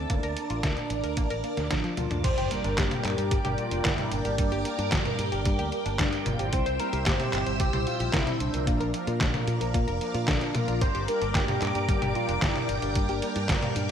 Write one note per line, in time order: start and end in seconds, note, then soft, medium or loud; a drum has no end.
0.00 2.20 A5 medium
0.10 0.21 D2 loud
0.10 0.23 A#3 medium
0.10 1.67 D4 loud
0.10 2.22 A#4 medium
0.10 2.22 D5 medium
0.10 2.22 D6 medium
0.10 kick loud
0.10 closed hi-hat loud
0.23 0.34 D2 medium
0.23 0.32 A#4 loud
0.23 closed hi-hat soft
0.37 closed hi-hat medium
0.50 0.61 A1 medium
0.50 0.63 F4 medium
0.50 closed hi-hat soft
0.63 0.75 D2 loud
0.63 0.69 A3 medium
0.63 kick loud
0.63 snare loud
0.63 closed hi-hat loud
0.77 0.86 A#2 medium
0.77 closed hi-hat soft
0.90 1.01 A1 medium
0.90 closed hi-hat medium
1.04 1.15 D2 medium
1.04 1.09 A#4 medium
1.04 closed hi-hat soft
1.17 1.28 A1 loud
1.17 1.30 A#3 medium
1.17 kick loud
1.17 closed hi-hat medium
1.30 1.41 A1 medium
1.30 1.39 A#4 loud
1.30 closed hi-hat soft
1.44 1.53 A#3 medium
1.44 closed hi-hat soft
1.57 1.68 D2 medium
1.57 1.63 A#2 medium
1.57 snare soft
1.57 closed hi-hat soft
1.71 1.82 A1 loud
1.71 1.79 F3 medium
1.71 1.96 D4 loud
1.71 kick loud
1.71 snare loud
1.71 closed hi-hat loud
1.84 1.93 F3 loud
1.84 closed hi-hat soft
1.97 2.08 D2 medium
1.97 2.03 F3 medium
1.97 2.22 F4 loud
1.97 closed hi-hat medium
1.97 high tom medium
2.11 2.22 D2 medium
2.11 2.16 D4 medium
2.11 closed hi-hat soft
2.11 mid tom medium
2.24 2.35 G1 loud
2.24 2.37 G3 medium
2.24 6.49 A#4 medium
2.24 2.52 C5 loud
2.24 6.49 D5 medium
2.24 8.63 G5 medium
2.24 6.49 D6 medium
2.24 kick loud
2.24 closed hi-hat loud
2.24 crash loud
2.24 impact medium
2.38 2.49 G1 medium
2.38 2.46 G4 loud
2.38 closed hi-hat soft
2.51 2.88 G3 loud
2.51 2.88 A#3 medium
2.51 2.88 D4 medium
2.51 2.79 A#4 loud
2.51 2.88 A#4 loud
2.51 closed hi-hat medium
2.64 2.75 G1 medium
2.64 2.77 D4 medium
2.64 closed hi-hat soft
2.78 2.89 G2 loud
2.78 2.83 F3 medium
2.78 3.31 G4 loud
2.78 kick loud
2.78 snare loud
2.78 clap loud
2.78 closed hi-hat loud
2.91 3.00 G2 medium
2.91 3.15 G3 medium
2.91 3.15 A#3 medium
2.91 3.15 D4 medium
2.91 3.15 A#4 loud
2.91 closed hi-hat soft
2.91 high tom medium
3.05 3.16 G2 medium
3.05 clap medium
3.05 closed hi-hat medium
3.18 3.29 G2 medium
3.18 3.32 G3 loud
3.18 3.32 A#3 medium
3.18 3.32 D4 medium
3.18 3.23 G4 medium
3.18 3.32 A#4 loud
3.18 closed hi-hat soft
3.31 3.42 G1 loud
3.31 3.44 G3 medium
3.31 3.60 G4 loud
3.31 kick loud
3.31 closed hi-hat medium
3.45 3.56 G1 medium
3.45 3.82 G3 medium
3.45 3.82 A#3 medium
3.45 3.82 D4 medium
3.45 3.54 G4 loud
3.45 3.82 A#4 medium
3.45 closed hi-hat soft
3.45 high tom medium
3.58 3.87 F4 medium
3.58 closed hi-hat soft
3.71 3.83 F1 medium
3.71 3.84 D4 medium
3.71 closed hi-hat soft
3.85 3.96 G1 loud
3.85 3.90 F3 medium
3.85 4.22 G3 medium
3.85 4.22 A#3 medium
3.85 4.22 D4 medium
3.85 4.13 E4 loud
3.85 4.22 A#4 medium
3.85 kick loud
3.85 snare loud
3.85 clap loud
3.85 closed hi-hat loud
3.98 4.07 G2 medium
3.98 closed hi-hat soft
3.98 high tom medium
4.12 4.23 G1 medium
4.12 4.65 D4 medium
4.12 closed hi-hat medium
4.25 4.36 G1 medium
4.25 4.62 G3 loud
4.25 4.62 A#3 medium
4.25 4.62 D4 medium
4.25 4.30 G4 medium
4.25 4.62 A#4 loud
4.25 closed hi-hat soft
4.38 4.50 G2 loud
4.38 4.51 G3 medium
4.38 kick loud
4.38 closed hi-hat medium
4.52 4.63 G1 medium
4.52 4.61 G4 loud
4.52 closed hi-hat soft
4.65 5.02 G3 loud
4.65 5.02 A#3 medium
4.65 5.02 D4 medium
4.65 5.02 A#4 loud
4.65 closed hi-hat medium
4.79 4.90 G2 medium
4.79 4.91 D4 medium
4.79 closed hi-hat soft
4.92 5.03 G1 loud
4.92 4.97 F3 medium
4.92 kick loud
4.92 snare loud
4.92 clap loud
4.92 closed hi-hat medium
5.05 5.14 G2 medium
5.05 5.29 G3 loud
5.05 5.29 A#3 medium
5.05 5.29 D4 medium
5.05 5.29 A#4 loud
5.05 closed hi-hat soft
5.05 high tom medium
5.19 5.30 G2 medium
5.19 closed hi-hat medium
5.32 5.43 G1 medium
5.32 5.47 G3 loud
5.32 5.47 A#3 medium
5.32 5.47 D4 medium
5.32 5.37 G4 medium
5.32 5.47 A#4 loud
5.32 closed hi-hat soft
5.45 5.57 G2 loud
5.45 5.58 G3 medium
5.45 kick loud
5.45 closed hi-hat medium
5.59 5.70 D2 medium
5.59 5.96 G3 medium
5.59 5.96 A#3 medium
5.59 5.96 D4 medium
5.59 5.68 G4 loud
5.59 5.96 A#4 medium
5.59 closed hi-hat soft
5.72 closed hi-hat soft
5.86 5.97 G1 medium
5.86 5.99 D4 medium
5.86 closed hi-hat soft
5.99 6.10 G2 loud
5.99 6.05 F3 medium
5.99 6.36 G3 medium
5.99 6.36 A#3 medium
5.99 6.36 D4 medium
5.99 6.28 D4 loud
5.99 6.36 A#4 loud
5.99 kick loud
5.99 snare loud
5.99 clap loud
5.99 closed hi-hat loud
6.13 6.21 G2 medium
6.13 closed hi-hat soft
6.26 6.37 G1 medium
6.26 6.54 F4 loud
6.26 closed hi-hat medium
6.26 high tom medium
6.39 6.50 G1 medium
6.39 6.76 G3 loud
6.39 6.76 C4 medium
6.39 6.76 E4 medium
6.39 6.45 G4 medium
6.39 6.76 C5 loud
6.39 closed hi-hat soft
6.53 6.64 C2 loud
6.53 6.66 C4 medium
6.53 6.79 C5 loud
6.53 8.65 C5 medium
6.53 8.65 E5 medium
6.53 8.65 E6 medium
6.53 kick loud
6.53 closed hi-hat medium
6.66 6.77 C2 medium
6.66 6.75 C5 loud
6.66 closed hi-hat soft
6.79 7.17 G3 loud
6.79 7.17 C4 medium
6.79 7.17 E4 medium
6.79 7.05 A#4 loud
6.79 7.17 C5 loud
6.79 closed hi-hat medium
6.93 7.04 C2 medium
6.93 7.06 G4 medium
6.93 closed hi-hat soft
7.06 7.17 G1 loud
7.06 7.12 A#3 medium
7.06 7.56 G4 loud
7.06 kick loud
7.06 snare loud
7.06 clap medium
7.06 closed hi-hat medium
7.20 7.29 C3 medium
7.20 7.43 G3 medium
7.20 7.43 C4 medium
7.20 7.43 E4 medium
7.20 7.43 C5 loud
7.20 closed hi-hat soft
7.20 high tom medium
7.33 7.44 G1 medium
7.33 clap medium
7.33 closed hi-hat medium
7.46 7.58 G1 medium
7.46 7.61 G3 loud
7.46 7.61 C4 medium
7.46 7.61 E4 medium
7.46 7.52 C5 medium
7.46 7.61 C5 loud
7.46 closed hi-hat soft
7.60 7.71 C2 loud
7.60 7.73 C4 medium
7.60 7.88 G4 loud
7.60 kick loud
7.60 closed hi-hat medium
7.73 7.84 C2 medium
7.73 8.10 G3 medium
7.73 8.10 C4 medium
7.73 8.10 E4 medium
7.73 7.82 C5 loud
7.73 8.10 C5 medium
7.73 closed hi-hat soft
7.73 high tom medium
7.87 8.13 F4 medium
7.87 closed hi-hat soft
8.00 8.11 A#1 medium
8.00 8.13 G4 medium
8.00 closed hi-hat soft
8.13 8.25 C2 loud
8.13 8.50 G3 medium
8.13 8.19 A#3 medium
8.13 8.50 C4 medium
8.13 8.42 E4 medium
8.13 8.50 E4 medium
8.13 8.50 C5 loud
8.13 kick loud
8.13 snare loud
8.13 clap loud
8.13 closed hi-hat loud
8.27 8.36 C3 medium
8.27 closed hi-hat soft
8.27 high tom medium
8.40 8.51 C2 medium
8.40 8.94 D4 medium
8.40 closed hi-hat medium
8.54 8.65 C2 medium
8.54 8.91 F3 medium
8.54 8.91 A#3 medium
8.54 8.91 D4 medium
8.54 8.91 A#4 loud
8.54 8.59 C5 medium
8.54 closed hi-hat soft
8.67 8.78 A#2 loud
8.67 8.80 A#3 medium
8.67 13.91 A#4 medium
8.67 13.91 D5 medium
8.67 10.79 F5 medium
8.67 13.91 D6 loud
8.67 kick loud
8.67 closed hi-hat medium
8.80 8.92 A#1 medium
8.80 8.89 A#4 loud
8.80 closed hi-hat soft
8.94 9.31 F3 loud
8.94 9.31 A#3 medium
8.94 9.31 D4 medium
8.94 9.31 A#4 loud
8.94 closed hi-hat medium
9.07 9.18 A#2 medium
9.07 9.20 F4 medium
9.07 closed hi-hat soft
9.21 9.32 A#1 loud
9.21 9.26 A3 medium
9.21 kick loud
9.21 snare loud
9.21 clap medium
9.21 closed hi-hat medium
9.34 9.43 A#2 medium
9.34 9.58 F3 medium
9.34 9.58 A#3 medium
9.34 9.58 D4 medium
9.34 9.58 A#4 loud
9.34 closed hi-hat soft
9.34 high tom medium
9.47 9.58 A#2 medium
9.47 closed hi-hat medium
9.61 9.72 A#1 medium
9.61 9.75 F3 loud
9.61 9.75 A#3 medium
9.61 9.75 D4 medium
9.61 9.66 A#4 medium
9.61 9.75 A#4 loud
9.61 closed hi-hat soft
9.74 9.85 A#2 loud
9.74 9.87 A#3 medium
9.74 kick loud
9.74 closed hi-hat medium
9.87 9.99 F1 medium
9.87 9.98 F3 medium
9.87 9.98 A#3 medium
9.87 9.98 D4 medium
9.87 9.96 A#4 loud
9.87 9.98 A#4 medium
9.87 closed hi-hat soft
10.01 10.38 F3 loud
10.01 10.38 A#3 medium
10.01 10.38 D4 medium
10.01 10.38 A#4 loud
10.01 closed hi-hat soft
10.14 10.25 A#2 medium
10.14 10.27 F4 medium
10.14 closed hi-hat soft
10.28 10.39 A#1 loud
10.28 10.33 A3 medium
10.28 10.56 D4 loud
10.28 kick loud
10.28 snare loud
10.28 clap medium
10.28 closed hi-hat medium
10.41 10.50 A#2 medium
10.41 10.80 F3 medium
10.41 10.80 A#3 medium
10.41 10.80 D4 medium
10.41 10.80 A#4 medium
10.41 closed hi-hat soft
10.55 10.66 A#2 medium
10.55 10.81 F4 loud
10.55 closed hi-hat medium
10.55 high tom medium
10.68 10.79 A#1 medium
10.68 10.73 A#4 medium
10.68 closed hi-hat soft
10.81 10.92 G1 loud
10.81 10.94 G3 medium
10.81 11.06 C5 loud
10.81 13.91 G5 medium
10.81 kick loud
10.81 closed hi-hat medium
10.95 11.06 G1 medium
10.95 11.04 G4 loud
10.95 closed hi-hat soft
11.08 11.45 G3 loud
11.08 11.45 A#3 medium
11.08 11.45 D4 medium
11.08 11.45 A#4 loud
11.08 11.33 A#4 loud
11.08 closed hi-hat medium
11.22 11.33 G1 medium
11.22 11.34 D4 medium
11.22 closed hi-hat soft
11.35 11.46 G2 loud
11.35 11.40 F3 medium
11.35 11.85 G4 loud
11.35 kick loud
11.35 snare loud
11.35 clap medium
11.35 closed hi-hat medium
11.48 11.57 G2 medium
11.48 11.72 G3 medium
11.48 11.72 A#3 medium
11.48 11.72 D4 medium
11.48 11.72 A#4 loud
11.48 closed hi-hat soft
11.48 high tom medium
11.62 11.73 G2 medium
11.62 clap medium
11.62 closed hi-hat medium
11.75 11.86 G2 medium
11.75 11.90 G3 loud
11.75 11.90 A#3 medium
11.75 11.90 D4 medium
11.75 11.80 G4 medium
11.75 11.90 A#4 loud
11.75 closed hi-hat soft
11.89 12.00 G1 loud
11.89 12.01 G3 medium
11.89 12.14 G4 loud
11.89 kick loud
11.89 closed hi-hat medium
12.02 12.13 G1 medium
12.02 12.39 G3 medium
12.02 12.39 A#3 medium
12.02 12.39 D4 medium
12.02 12.11 G4 loud
12.02 12.39 A#4 medium
12.02 closed hi-hat soft
12.02 high tom medium
12.15 12.44 F4 medium
12.15 closed hi-hat soft
12.29 12.40 F1 medium
12.29 12.41 D4 medium
12.29 closed hi-hat soft
12.42 12.53 G1 loud
12.42 12.47 F3 medium
12.42 12.79 G3 medium
12.42 12.79 A#3 medium
12.42 12.79 D4 medium
12.42 12.70 E4 medium
12.42 12.79 A#4 medium
12.42 kick loud
12.42 snare loud
12.42 clap medium
12.42 closed hi-hat medium
12.56 12.64 G2 medium
12.56 closed hi-hat soft
12.56 high tom medium
12.69 12.80 G1 medium
12.69 13.22 D4 medium
12.69 closed hi-hat medium
12.82 12.93 G1 medium
12.82 13.19 G3 loud
12.82 13.19 A#3 medium
12.82 13.19 D4 medium
12.82 12.88 G4 medium
12.82 13.19 A#4 loud
12.82 closed hi-hat soft
12.96 13.07 G2 loud
12.96 13.08 G3 medium
12.96 kick loud
12.96 closed hi-hat medium
13.09 13.20 G1 medium
13.09 13.18 G4 loud
13.09 closed hi-hat soft
13.22 13.59 G3 loud
13.22 13.59 A#3 medium
13.22 13.59 D4 medium
13.22 13.59 A#4 loud
13.22 closed hi-hat medium
13.36 13.47 G2 medium
13.36 13.49 D4 medium
13.36 closed hi-hat soft
13.49 13.60 G1 loud
13.49 13.55 F3 medium
13.49 kick loud
13.49 snare loud
13.49 clap medium
13.49 closed hi-hat medium
13.63 13.71 G2 medium
13.63 13.86 G3 medium
13.63 13.86 A#3 medium
13.63 13.86 D4 medium
13.63 13.86 A#4 loud
13.63 closed hi-hat soft
13.63 high tom medium
13.76 13.87 G2 medium
13.76 closed hi-hat medium